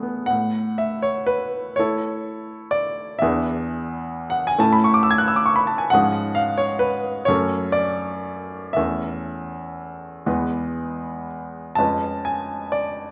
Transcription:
Already playing: E2 A3 B3 E4 G#4
0.03 B3
0.26 A2 F#5
0.78 E5
1.02 C#5
1.27 B4
1.76 A3 E4 A4 C#5
2.71 D5
3.19 E2 B3 D4 E5
3.23 G#4
4.30 F#5
4.47 G#5
4.58 A2 A3 C#4 E4 A5
4.73 B5
4.84 C#6
4.94 D6
5.03 E6
5.11 G#6
5.18 F#6
5.28 E6
5.36 D6
5.46 C#6
5.56 B5
5.67 A5
5.78 G#5
5.90 G#2 F3 C#4 F#5
5.94 G#4
6.35 F5
6.58 C#5
6.79 B4
7.25 F#2 A3 C#4 C#5
7.29 A4
7.72 D5
8.73 E2 A3 C#4 E5
8.78 A4
10.26 E2 G#3 B3 B4
11.75 F2 G#3 C#4 A5
11.80 B4
12.25 G#5
12.72 D5

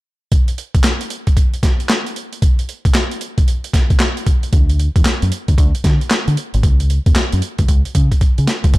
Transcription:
0.32 kick, closed hi-hat
0.48 closed hi-hat
0.58 closed hi-hat
0.75 kick, closed hi-hat
0.84 snare, clap, closed hi-hat
1.01 closed hi-hat
1.10 closed hi-hat
1.27 kick, closed hi-hat
1.37 kick, closed hi-hat
1.54 closed hi-hat
1.63 kick, snare, closed hi-hat
1.80 closed hi-hat
1.89 snare, clap, closed hi-hat
2.07 closed hi-hat
2.16 closed hi-hat
2.33 closed hi-hat
2.42 kick, closed hi-hat
2.59 closed hi-hat
2.69 closed hi-hat
2.85 kick, closed hi-hat
2.94 snare, clap, closed hi-hat
3.11 closed hi-hat
3.21 closed hi-hat
3.38 kick, closed hi-hat
3.48 closed hi-hat
3.64 closed hi-hat
3.73 kick, snare, closed hi-hat
3.90 kick, closed hi-hat
4.00 snare, clap, closed hi-hat
4.17 closed hi-hat
4.26 kick, closed hi-hat
4.43 closed hi-hat
4.53 D2, kick, closed hi-hat
4.69 closed hi-hat
4.79 closed hi-hat
4.96 E2, kick, closed hi-hat
5.05 snare, clap, closed hi-hat
5.22 F#2, closed hi-hat
5.32 closed hi-hat
5.48 D2, kick, closed hi-hat
5.58 D2, kick, closed hi-hat
5.75 closed hi-hat
5.84 D3, kick, snare, closed hi-hat
6.01 closed hi-hat
6.10 snare, clap, closed hi-hat
6.28 D3, closed hi-hat
6.37 closed hi-hat
6.54 G#1, closed hi-hat
6.63 C#2, kick, closed hi-hat
6.80 closed hi-hat
6.90 closed hi-hat
7.06 E2, kick, closed hi-hat
7.16 snare, clap, closed hi-hat
7.32 F#2, closed hi-hat
7.42 closed hi-hat
7.58 C#2, kick, closed hi-hat
7.68 C#2, kick, closed hi-hat
7.85 closed hi-hat
7.95 C#3, kick, closed hi-hat
8.12 kick, closed hi-hat
8.21 kick, closed hi-hat
8.38 C#3, closed hi-hat
8.47 snare, closed hi-hat
8.64 C#2, kick, closed hi-hat
8.74 F#1, kick, closed hi-hat

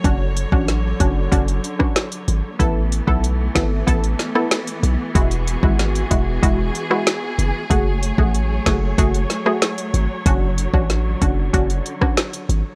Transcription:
Already playing: F#3 C#5
0.04 F#1 D3 C#4 D4 F#4, kick, closed hi-hat
0.37 closed hi-hat
0.52 A1 C#4 D4 F#4, kick
0.68 snare, closed hi-hat
1.00 F#1 C#4 D4 F#4, kick, closed hi-hat
1.32 F#1 C#4 D4 F#4, kick, closed hi-hat
1.48 closed hi-hat
1.64 closed hi-hat
1.79 C#4 D4 F#4, kick, cross-stick
1.96 snare, closed hi-hat
2.12 closed hi-hat
2.28 G#1, closed hi-hat
2.59 A1 E3 A3 B3 E4 A4, kick, closed hi-hat
2.92 closed hi-hat
3.07 B1 B3 E4 A4, kick
3.24 closed hi-hat
3.55 G#1 B3 E4 A4, kick, snare, closed hi-hat
3.87 A1 B3 E4 A4, kick, closed hi-hat
4.04 closed hi-hat
4.19 snare, closed hi-hat
4.35 B3 E4 A4, cross-stick
4.51 snare, closed hi-hat
4.67 closed hi-hat
4.83 B1, closed hi-hat
5.15 E1 G#3 E4 F#4 G#4, kick, closed hi-hat
5.31 closed hi-hat
5.47 closed hi-hat
5.63 G#1 G#3 E4 F#4, kick
5.79 snare, closed hi-hat
5.95 closed hi-hat
6.11 E1 G#3 E4 F#4, kick, closed hi-hat
6.42 E1 G#3 E4 F#4, kick, closed hi-hat
6.75 closed hi-hat
6.90 G#3 E4 F#4, cross-stick
7.07 snare, closed hi-hat
7.39 F#1, closed hi-hat
7.70 F#1 F#3 A3 F#4 G#4 C#5, kick, closed hi-hat
8.03 closed hi-hat
8.18 A1 A3 F#4 G#4, kick
8.34 closed hi-hat
8.66 F#1 A3 F#4 G#4, kick, snare, closed hi-hat
8.98 F#1 A3 F#4 G#4, kick, closed hi-hat
9.14 closed hi-hat
9.30 snare, closed hi-hat
9.46 A3 F#4 G#4, cross-stick
9.62 snare, closed hi-hat
9.78 closed hi-hat
9.94 G#1, closed hi-hat
10.26 F#1 D3 C#4 D4 F#4, kick, closed hi-hat
10.58 closed hi-hat
10.74 A1 C#4 D4 F#4, kick
10.90 snare, closed hi-hat
11.21 F#1 C#4 D4 F#4, kick, closed hi-hat
11.53 F#1 C#4 D4 F#4, kick, closed hi-hat
11.70 closed hi-hat
11.86 closed hi-hat
12.01 C#4 D4 F#4, kick, cross-stick
12.17 snare, closed hi-hat
12.33 closed hi-hat
12.49 G#1, closed hi-hat

